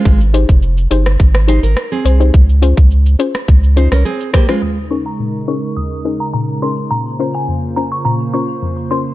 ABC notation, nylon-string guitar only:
X:1
M:4/4
L:1/16
Q:1/4=105
K:Ebmix
V:1 name="Nylon-string guitar"
[A,F] z8 z [Ec] B2 [CA]3 | z8 z2 [Ec] [DB] [CA]2 [B,G] [A,F]- | [A,F] z12 z3 | z16 |]